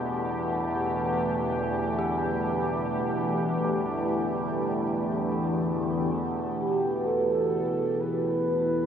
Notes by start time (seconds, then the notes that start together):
Already playing: E2 B2 E3 A3 D4 G4
1.99 G4
6.14 E2 B2
6.60 G4
7.06 A4
8.00 B4